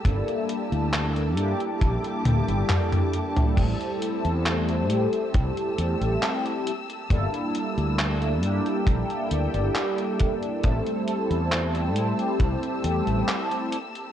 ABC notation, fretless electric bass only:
X:1
M:4/4
L:1/16
Q:1/4=68
K:Aphr
V:1 name="Fretless electric bass" clef=bass
G,,, z2 D,,3 G,, z B,,, z D,, G,,, z4 | A,,, z2 E,,3 A,, z C,, z E,, A,,, z4 | G,,, z2 D,,3 G,, z B,,, z D,, G,,, z4 | A,,, z2 E,,3 A,, z C,, z E,, A,,, z4 |]